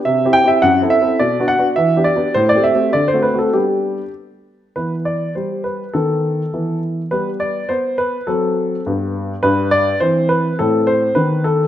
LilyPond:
<<
  \new Staff \with { instrumentName = "Grand piano" } { \time 2/4 \key g \major \tempo 4 = 103 << { e''8 g''16 e''16 fis''8 e''8 | d''8 fis''8 e''8 d''8 | c''16 d''16 e''8 d''16 c''16 b'16 a'16 | g'4 r4 |
\key e \minor b'8 d''8 c''8 b'8 | a'4. r8 | b'8 d''8 c''8 b'8 | a'4. r8 |
b'8 d''8 c''8 b'8 | a'8 c''8 b'8 a'8 | } \\ { \tuplet 3/2 { c8 <c' e' g'>8 <c' e' g'>8 fis,8 <c' e' a'>8 <c' e' a'>8 } | \tuplet 3/2 { b,8 <b d' fis'>8 <b d' fis'>8 e8 <b d' g'>8 <b d' g'>8 } | \tuplet 3/2 { a,8 <a c' g'>8 <a c' g'>8 d8 <a c' fis'>8 <a c' fis'>8 } | <g b d'>4 r4 |
e4 g4 | dis4 e4 | g4 b4 | fis4 g,4 |
g,4 e4 | a,4 dis4 | } >> }
  \new Staff \with { instrumentName = "Grand piano" } { \time 2/4 \key g \major r2 | r2 | r2 | r2 |
\key e \minor b2 | b4 b4 | b2 | c'4 b4 |
d'4 c'4 | c'4 b4 | }
>>